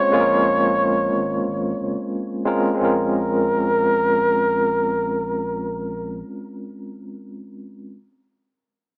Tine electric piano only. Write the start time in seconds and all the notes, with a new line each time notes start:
Already playing: G#3 C4 C#4 F4 C5
0.12 G#3 A#3 C#4 F4 G#4
0.21 A#4
2.45 G#3 C4 C#4 F4 A#4
2.74 G#3 C4
2.80 C#4 F4
2.85 A#4